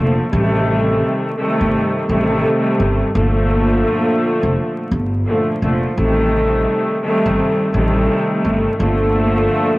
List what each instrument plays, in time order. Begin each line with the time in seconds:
Already playing: upright bass F1, string section A#2 D3 F3 A3
0.32 upright bass A1, string section C3 D#3 G3 A3
1.38 string section C3 D#3 G3 A3
1.61 upright bass G1
2.09 upright bass A1, string section C3 D#3 G3 A3
2.80 upright bass G1
3.15 upright bass G1, string section A#2 D3 F3 A3
4.43 upright bass F1
4.92 upright bass G1
5.26 string section A#2 D3 F3 A3
5.62 upright bass F1, string section A#2 D3 F3 A3
5.97 upright bass A1, string section C3 D#3 G3 A3
7.03 string section C3 D#3 G3 A3
7.26 upright bass G1
7.74 upright bass A1, string section C3 D#3 G3 A3
8.45 upright bass G1
8.79 upright bass G1, string section A#2 D3 F3 A3